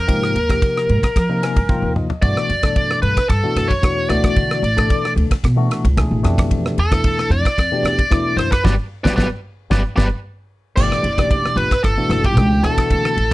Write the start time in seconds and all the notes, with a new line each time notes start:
Already playing: A#4
0.07 G#2 C3 F3 A#3 D#4 G4, kick, ride
0.23 cross-stick
0.35 D#2, ride
0.48 C3 F3 A#3 D#4 G4, kick, cross-stick, ride
0.62 kick, ride
0.78 cross-stick
0.89 G#2, ride
1.03 muted upright bass stroke, kick, cross-stick, ride
1.16 F3, kick, cross-stick, ride
1.29 C3 F3 A#3 D#4 A#4
1.43 G#5, cross-stick, ride
1.56 G2, kick, ride
1.68 C3 F3 A#3 D#4 F4 G5, kick, high tom
1.82 D#2
1.96 D#5, mid tom
2.10 floor tom
2.22 G2 B2 E3 A3 D4 F#4 D5, kick, ride
2.37 cross-stick
2.49 F#2, ride
2.62 B2 E3 A3 D4 A4, kick, cross-stick, ride
2.76 kick, ride
2.91 cross-stick
3.02 G2 B4, ride
3.17 kick, cross-stick, ride
3.29 G2 A4, kick, cross-stick, ride
3.43 B2 E3 A3 D4 F#4
3.56 F#2, cross-stick, ride
3.68 C#5, kick, ride
3.82 E2 B2 E3 A3 D4 F#4, kick, cross-stick, ride
4.09 D2 B2 E3 A3 D4 F#4 D5, cross-stick, ride
4.24 kick, cross-stick, ride
4.36 D3, kick, ride
4.51 cross-stick
4.62 A1, ride
4.76 B2 E3 A3 D4 A4, kick, cross-stick, ride
4.90 kick, ride
5.05 cross-stick
5.16 D2, ride
5.31 muted upright bass stroke, kick, cross-stick, ride
5.44 B2, kick, cross-stick, ride
5.56 B2 E3 A3 D4 F#4
5.71 cross-stick, ride
5.85 C#2, kick, ride
5.96 B2 E3 A3 D4 G#4, kick, cross-stick, ride
6.11 A1
6.23 F2 B2 E3 A3 D4 G4, cross-stick, ride
6.38 kick, cross-stick, ride
6.51 kick, ride
6.66 cross-stick
6.78 E2 A4, ride
6.90 B2 E3 A3 D4 E4, kick, cross-stick, ride
7.04 kick, ride
7.19 cross-stick
7.30 F2 D5, ride
7.45 kick, cross-stick, ride
7.58 F2, kick, cross-stick, ride
7.71 B2 E3 A3 D4 G4
7.83 E2, cross-stick, ride
7.99 kick, ride
8.10 E2 B2 E3 A3 D4 E4, kick, cross-stick, ride
8.36 F#2 C5, cross-stick, ride
8.52 B4, kick, cross-stick, ride
8.64 G1 F#3 G3 B3 G4 B4 D5, kick, snare
9.04 G1 F#3 G3 B3 G4 B4 D5, kick, snare
9.16 G1 F#3 G3 B3 G4 B4 D5, kick, snare
9.70 G1 F#3 G3 B3 G4 B4 D5, kick, snare
9.96 G1 F#3 G3 B3 G4 B4 D5, kick, snare
10.76 G1 B2 E3 A3 D4 G4 D5, kick, crash
10.92 cross-stick
11.03 F#1, ride
11.17 B2 E3 A3 D4 G4, kick, cross-stick, ride
11.31 kick, ride
11.46 cross-stick
11.56 G1 B4, ride
11.71 kick, cross-stick, ride
11.84 G1 A4, kick, cross-stick, ride
11.97 B2 E3 A3 D4 F#4
12.09 F#1, cross-stick, ride
12.24 G4, kick, ride
12.36 C#2 B2 E3 A3 D4 G4, kick, cross-stick, ride
12.63 D2 B2 E3 A3 D4 F#4 A4, cross-stick, ride
12.78 kick, cross-stick, ride
12.90 D3, kick, ride
13.05 cross-stick
13.17 A1, ride